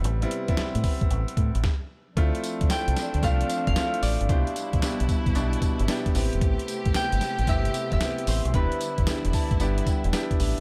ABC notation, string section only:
X:1
M:4/4
L:1/8
Q:"Swing 16ths" 1/4=113
K:Am
V:1 name="String section" clef=bass
[C,G,B]6 z2 | [F,CD]8 | [B,,G,E]6- [B,,G,E] [C,A,G]- | [C,A,G]8 |
[D,G,E]8 |]